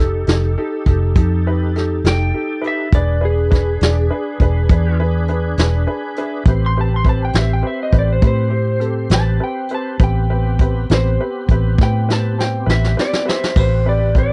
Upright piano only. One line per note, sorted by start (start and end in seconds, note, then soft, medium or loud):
0.00 0.20 D#4 soft
0.00 0.20 G4 soft
0.00 0.20 A4 soft
0.27 0.50 D#4 soft
0.27 0.50 G4 soft
0.27 0.50 A4 soft
0.58 0.80 D#4 medium
0.58 0.80 G4 soft
0.58 0.80 A4 medium
0.86 1.09 D#4 medium
0.86 1.09 G4 soft
0.86 1.09 A4 medium
1.16 1.39 D#4 medium
1.16 1.39 G4 soft
1.16 1.39 A4 medium
1.46 1.69 D#4 medium
1.46 1.68 G4 medium
1.46 1.69 B4 medium
1.76 1.98 D#4 medium
1.76 1.98 G4 soft
1.76 1.98 A4 medium
2.05 2.27 D#4 soft
2.05 2.27 G4 soft
2.05 2.27 A4 medium
2.34 2.56 D#4 soft
2.34 2.56 G4 soft
2.34 2.56 A4 soft
2.61 2.85 D#4 soft
2.61 2.85 G4 soft
2.61 2.85 B4 soft
2.94 3.16 D4 medium
2.94 3.16 G#4 soft
2.94 3.16 B4 medium
3.21 3.44 D4 soft
3.21 3.44 G#4 soft
3.21 3.44 B4 medium
3.50 3.73 D4 soft
3.50 3.73 G#4 soft
3.50 3.73 B4 medium
3.82 4.04 D4 soft
3.82 4.04 G#4 soft
3.82 4.04 D5 soft
4.10 4.33 D4 medium
4.10 4.33 G#4 medium
4.10 4.33 B4 medium
4.40 4.62 D4 medium
4.40 4.63 G#4 soft
4.40 4.63 B4 medium
4.70 4.92 D4 medium
4.70 4.92 G#4 soft
4.70 4.93 B4 medium
5.00 5.22 D4 medium
5.00 5.22 G#4 soft
5.00 5.22 B4 medium
5.28 5.51 D4 medium
5.28 5.50 G#4 medium
5.28 5.51 B4 medium
5.59 5.80 D4 medium
5.59 5.81 G#4 medium
5.59 5.81 B4 medium
5.87 6.09 D4 medium
5.87 6.10 G#4 soft
5.87 6.10 B4 medium
5.87 6.15 G#5 soft
6.18 6.40 D4 medium
6.18 6.39 G#4 medium
6.18 6.40 B4 medium
6.18 6.45 E5 soft
6.47 6.69 C4 medium
6.47 6.70 G4 soft
6.47 6.69 B4 medium
6.77 6.98 C4 soft
6.77 6.99 G4 soft
6.77 6.99 B4 medium
7.05 7.27 C4 soft
7.05 7.28 G4 soft
7.05 7.28 B4 medium
7.36 7.57 C4 soft
7.36 7.58 G4 soft
7.36 7.58 B4 soft
7.62 7.85 C4 soft
7.62 7.86 G4 soft
7.62 7.86 B4 medium
7.92 8.15 C4 soft
7.92 8.16 G4 soft
7.92 8.16 B4 medium
8.22 8.45 C4 soft
8.22 8.45 G4 soft
8.22 8.45 B4 soft
8.50 8.74 C4 soft
8.50 8.74 G4 soft
8.50 8.74 C5 medium
8.80 9.04 C4 soft
8.80 9.04 G4 soft
8.80 9.03 A4 medium
9.10 9.33 C4 soft
9.10 9.34 G4 soft
9.10 9.34 B4 medium
9.40 9.63 C4 soft
9.40 9.63 G4 soft
9.40 9.63 B4 soft
9.71 9.93 C4 soft
9.71 9.93 G4 soft
9.71 9.93 B4 medium
10.00 10.23 C4 medium
10.00 10.23 G4 soft
10.00 10.23 B4 medium
10.30 10.52 C4 soft
10.30 10.52 G4 soft
10.30 10.52 B4 medium
10.60 10.82 C4 soft
10.60 10.83 G4 soft
10.60 10.83 B4 medium
10.90 11.12 C4 soft
10.90 11.13 G4 soft
10.90 11.12 B4 soft
11.20 11.42 C4 soft
11.20 11.42 G4 soft
11.20 11.42 B4 medium
11.51 11.72 C4 medium
11.51 11.72 G4 medium
11.51 11.72 B4 medium
11.81 12.02 C4 soft
11.81 12.02 G4 soft
11.81 12.02 B4 medium
12.09 12.31 C4 soft
12.09 12.31 G4 soft
12.09 12.30 B4 medium
12.38 12.60 C4 soft
12.38 12.60 G4 soft
12.38 12.60 C5 medium
12.66 12.89 C4 medium
12.66 12.89 G4 soft
12.66 12.89 B4 medium
12.97 13.19 C4 soft
12.97 13.19 G4 soft
12.97 13.19 B4 medium
13.25 13.48 C4 soft
13.25 13.48 G4 soft
13.25 13.48 B4 medium
13.57 13.78 C4 soft
13.57 13.78 G4 soft
13.57 13.78 B4 medium
13.86 14.08 C4 soft
13.86 14.08 G4 soft
13.86 14.08 B4 soft
14.15 14.33 C4 soft
14.15 14.33 G4 soft
14.15 14.33 B4 soft